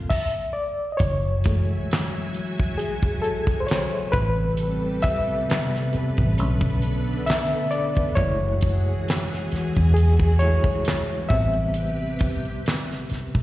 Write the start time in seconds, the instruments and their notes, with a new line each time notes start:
0.10 reed electric piano E5, kick, crash
0.53 reed electric piano D5
0.92 reed electric piano D#5
0.97 fingered electric bass F#1, string machine F#3 F#4 E5 G#5, reed electric piano C#5, kick, closed hi-hat
1.44 reed electric piano E3 G#3 A3, kick, closed hi-hat
1.91 snare, clap, closed hi-hat
2.34 closed hi-hat
2.58 kick, closed hi-hat
2.78 reed electric piano G#4, closed hi-hat
3.03 kick
3.22 reed electric piano A4, closed hi-hat
3.47 kick, closed hi-hat
3.60 reed electric piano C5
3.67 reed electric piano C#5, closed hi-hat
3.71 snare, clap
4.12 fingered electric bass A1, string machine C3 G3 A4 B4, reed electric piano B4, kick, closed hi-hat
4.57 closed hi-hat
5.02 reed electric piano E5, kick, closed hi-hat
5.48 reed electric piano C3 G3 B3, snare, clap, closed hi-hat
5.75 snare
5.93 muted fingered electric bass stroke, closed hi-hat
6.17 fingered electric bass A1, kick, closed hi-hat
6.37 fingered electric bass B1, string machine D3 B3 A4, reed electric piano D3 A3 C#4, closed hi-hat
6.61 kick
6.82 closed hi-hat
7.26 reed electric piano E5, snare, closed hi-hat
7.31 clap
7.71 reed electric piano D5, closed hi-hat
7.95 kick, closed hi-hat
8.15 fingered electric bass F#1, string machine E3 F#4 G#4, reed electric piano G#3 A3 E4 C#5, kick, closed hi-hat
8.61 kick, closed hi-hat
9.08 snare, clap, closed hi-hat
9.33 snare
9.52 muted fingered electric bass stroke, snare, closed hi-hat
9.75 fingered electric bass E2, kick, closed hi-hat
9.94 reed electric piano G#4, closed hi-hat
10.20 kick
10.39 reed electric piano G#3 A3 E4 C#5, closed hi-hat
10.64 kick, closed hi-hat
10.85 snare, clap, closed hi-hat
11.29 fingered electric bass A1, string machine C3 G4 B4, reed electric piano G3 B3 C4 E5, kick, open hi-hat
11.53 closed hi-hat
11.74 closed hi-hat
12.19 kick, closed hi-hat
12.45 closed hi-hat
12.66 snare, clap, closed hi-hat
12.92 snare
13.10 muted fingered electric bass stroke, snare, closed hi-hat
13.35 fingered electric bass B1, kick